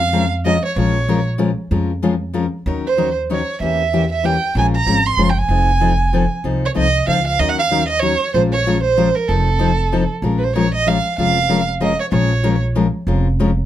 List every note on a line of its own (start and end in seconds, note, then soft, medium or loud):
0.00 0.57 F2 medium
0.00 0.29 F5 medium
0.13 0.23 F3 medium
0.13 0.23 G#3 medium
0.13 0.24 C#4 medium
0.13 0.24 F4 medium
0.13 0.24 A#4 medium
0.45 0.55 F3 medium
0.45 0.55 G#3 medium
0.45 0.56 C#4 medium
0.45 0.56 F4 medium
0.45 0.56 A#4 medium
0.45 0.62 D#5 medium
0.65 0.76 C#5 medium
0.76 1.52 A#1 medium
0.76 0.96 F3 medium
0.76 0.96 G#3 medium
0.76 0.97 C#4 medium
0.76 0.97 F4 medium
0.76 0.97 A#4 medium
0.76 1.24 C#5 medium
1.08 1.19 F3 medium
1.08 1.19 G#3 medium
1.08 1.19 C#4 medium
1.08 1.19 F4 medium
1.08 1.19 A#4 loud
1.38 1.50 F3 medium
1.38 1.49 G#3 medium
1.38 1.50 C#4 medium
1.38 1.50 F4 medium
1.38 1.50 A#4 medium
1.71 2.47 F2 medium
1.71 1.91 F3 medium
1.71 1.91 G#3 medium
1.71 1.91 C#4 medium
1.71 1.91 F4 medium
1.71 1.91 A#4 medium
2.02 2.13 F3 medium
2.02 2.13 G#3 medium
2.02 2.13 C#4 medium
2.02 2.14 F4 medium
2.02 2.14 A#4 medium
2.33 2.44 F3 medium
2.33 2.45 G#3 medium
2.33 2.45 C#4 medium
2.33 2.45 F4 medium
2.33 2.45 A#4 medium
2.66 3.42 D#2 medium
2.66 2.86 D#3 medium
2.66 2.86 F#3 medium
2.66 2.86 C#4 medium
2.66 2.86 D#4 medium
2.66 2.86 A#4 medium
2.86 3.15 C5 medium
2.97 3.08 D#3 medium
2.97 3.08 F#3 medium
2.97 3.08 C#4 medium
2.97 3.08 D#4 medium
2.97 3.08 A#4 medium
3.30 3.40 D#3 medium
3.30 3.40 F#3 medium
3.30 3.40 C#4 medium
3.30 3.40 D#4 medium
3.30 3.40 A#4 medium
3.30 3.60 C#5 medium
3.60 4.36 E2 medium
3.60 3.81 E3 medium
3.60 3.81 A#3 medium
3.60 3.81 C#4 medium
3.60 3.81 G4 medium
3.60 4.08 E5 medium
3.93 4.03 E3 medium
3.93 4.03 A#3 medium
3.93 4.03 C#4 medium
3.93 4.04 G4 medium
4.12 4.27 E5 medium
4.23 4.34 E3 medium
4.23 4.35 A#3 medium
4.23 4.35 C#4 medium
4.23 4.35 G4 medium
4.23 4.56 G5 medium
4.55 4.81 A#1 medium
4.55 4.75 F3 medium
4.55 4.75 G#3 medium
4.55 4.75 C#4 medium
4.55 4.76 F4 medium
4.55 4.76 A#4 medium
4.55 4.66 G#5 medium
4.76 5.08 A#5 medium
4.86 5.13 G#1 medium
4.86 4.97 F3 medium
4.86 4.97 G#3 medium
4.86 4.98 C#4 medium
4.86 4.97 F4 medium
4.86 4.98 A#4 medium
5.07 5.31 C6 medium
5.17 5.45 F#1 medium
5.17 5.29 F3 medium
5.17 5.29 G#3 medium
5.17 5.29 C#4 medium
5.17 5.29 F4 medium
5.17 5.29 A#4 medium
5.30 5.40 G5 medium
5.38 6.32 G#5 medium
5.48 6.25 F1 medium
5.48 5.69 F3 medium
5.48 5.70 C4 medium
5.48 5.70 D#4 medium
5.48 5.70 A4 medium
5.81 5.92 F3 medium
5.81 5.92 C4 medium
5.81 5.92 D#4 medium
5.81 5.92 A4 medium
6.13 6.24 F3 medium
6.13 6.24 C4 medium
6.13 6.24 D#4 medium
6.13 6.24 A4 medium
6.44 6.70 C2 medium
6.44 6.64 F3 medium
6.44 6.64 C4 medium
6.44 6.65 D#4 medium
6.44 6.64 A4 medium
6.65 6.71 C#5 medium
6.75 7.03 C2 medium
6.75 6.86 F3 medium
6.75 6.86 C4 medium
6.75 6.86 D#4 medium
6.75 6.87 A4 medium
6.75 7.06 D#5 medium
7.07 7.35 C#2 medium
7.07 7.18 F3 medium
7.07 7.18 C4 medium
7.07 7.18 D#4 medium
7.07 7.18 A4 medium
7.07 7.26 F5 medium
7.27 7.41 F5 medium
7.39 8.15 D#2 medium
7.39 7.59 D#3 medium
7.39 7.59 F#3 medium
7.39 7.59 C#4 medium
7.39 7.59 D#4 medium
7.39 7.59 A#4 medium
7.39 7.51 D#5 medium
7.49 7.58 F#5 medium
7.59 7.87 F5 medium
7.71 7.82 D#3 medium
7.71 7.82 F#3 medium
7.71 7.82 C#4 medium
7.71 7.82 D#4 medium
7.71 7.82 A#4 medium
7.88 8.01 D#5 medium
8.00 8.13 D#3 medium
8.00 8.13 F#3 medium
8.00 8.13 C#4 medium
8.00 8.13 D#4 medium
8.00 8.13 A#4 medium
8.00 8.33 C#5 medium
8.34 9.10 A#1 medium
8.34 8.54 F3 medium
8.34 8.54 G#3 medium
8.34 8.54 C#4 medium
8.34 8.54 F4 medium
8.34 8.54 A#4 medium
8.34 8.42 C5 medium
8.52 8.81 C#5 medium
8.66 8.76 F3 medium
8.66 8.77 G#3 medium
8.66 8.77 C#4 medium
8.66 8.77 F4 medium
8.66 8.77 A#4 medium
8.83 9.16 C5 medium
8.97 9.08 F3 medium
8.97 9.08 G#3 medium
8.97 9.08 C#4 medium
8.97 9.08 F4 medium
8.97 9.08 A#4 medium
9.15 9.29 A#4 medium
9.28 10.04 F1 medium
9.28 9.48 F3 medium
9.28 9.49 C4 medium
9.28 9.49 D#4 medium
9.28 10.10 A4 medium
9.28 9.49 A4 medium
9.59 9.70 F3 medium
9.59 9.70 C4 medium
9.59 9.70 D#4 medium
9.59 9.71 A4 medium
9.92 10.03 F3 medium
9.92 10.03 C4 medium
9.92 10.03 D#4 medium
9.92 10.03 A4 medium
10.22 10.98 A#1 medium
10.22 10.43 F3 medium
10.22 10.43 G#3 medium
10.22 10.43 C#4 medium
10.22 10.43 F4 medium
10.22 10.43 A#4 medium
10.38 10.45 B4 medium
10.44 10.55 C5 medium
10.55 10.66 F3 medium
10.55 10.66 G#3 medium
10.55 10.66 C#4 medium
10.55 10.66 F4 medium
10.55 10.66 A#4 medium
10.55 10.73 C#5 medium
10.75 10.89 D#5 medium
10.86 10.97 F3 medium
10.86 10.97 G#3 medium
10.86 10.97 C#4 medium
10.86 10.97 F4 medium
10.86 10.97 A#4 medium
10.86 11.18 F5 medium
11.18 11.94 F1 medium
11.18 11.38 F3 medium
11.18 11.38 G#3 medium
11.18 11.38 C#4 medium
11.18 11.38 F4 medium
11.18 11.38 A#4 medium
11.18 11.65 F5 loud
11.49 11.60 F3 medium
11.49 11.60 G#3 medium
11.49 11.60 C#4 medium
11.49 11.60 F4 medium
11.49 11.60 A#4 medium
11.80 11.91 F3 medium
11.80 11.91 G#3 medium
11.80 11.92 C#4 medium
11.80 11.92 F4 medium
11.80 11.92 A#4 medium
11.80 11.98 D#5 medium
12.00 12.06 C#5 medium
12.11 12.88 A#1 medium
12.11 12.31 F3 medium
12.11 12.31 G#3 medium
12.11 12.31 C#4 medium
12.11 12.32 F4 medium
12.11 12.32 A#4 medium
12.11 12.59 C#5 medium
12.43 12.54 F3 medium
12.43 12.54 G#3 medium
12.43 12.54 C#4 loud
12.43 12.54 F4 medium
12.43 12.55 A#4 loud
12.75 12.86 F3 medium
12.75 12.86 G#3 medium
12.75 12.86 C#4 medium
12.75 12.86 F4 medium
12.75 12.86 A#4 medium
13.07 13.65 F1 medium
13.07 13.26 F3 medium
13.07 13.27 G#3 medium
13.07 13.27 C#4 medium
13.07 13.27 F4 medium
13.07 13.27 A#4 medium
13.39 13.49 F3 medium
13.39 13.50 G#3 medium
13.39 13.50 C#4 medium
13.39 13.50 F4 medium
13.39 13.50 A#4 medium